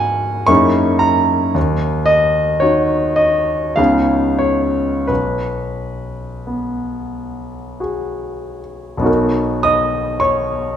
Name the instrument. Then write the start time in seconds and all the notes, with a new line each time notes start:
grand piano
Already playing: G#2 F#4 A#4 F#5 G#5
0.47 F#2 A#3 D#4 E4 G#4 C#6
0.99 A#5
1.54 D#2
2.06 D#5
2.60 D#4 F#4 C#5
3.16 D#5
3.76 C#2 B3 C#4 D#4 G#4 F5
4.39 C#5
5.07 B1 B4
6.47 B3
7.80 F#4 G#4
8.97 B1 B3
9.02 D#4 F#4
9.06 A#4
9.63 D#5 D#6
10.20 C#5 C#6